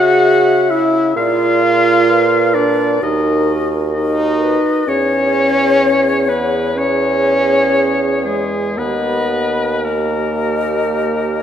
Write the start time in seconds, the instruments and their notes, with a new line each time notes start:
Already playing: bassoon C#3, french horn F#4, clarinet G#4, flute E5, oboe F#5
0.70 french horn E4, oboe E5
1.15 bassoon A#2, french horn F4, clarinet G#4, flute D5, oboe F5
2.07 flute B4
2.54 french horn D4, oboe D5
3.01 bassoon D#2, french horn D#4, clarinet F#4, flute A#4, oboe D#5
3.94 french horn D#4, clarinet F#4, flute A#4, oboe D#5
4.42 flute B4
4.87 bassoon E2, french horn C#4, clarinet G#4, oboe C#5, flute C#5
6.28 french horn B3, oboe B4
6.76 french horn C#4, clarinet G#4, flute C#5, oboe C#5
8.25 french horn G#3, oboe G#4
8.77 bassoon D#2, french horn B3, clarinet G4, oboe B4, flute D#5
9.84 french horn A#3, clarinet G4, oboe A#4, flute D#5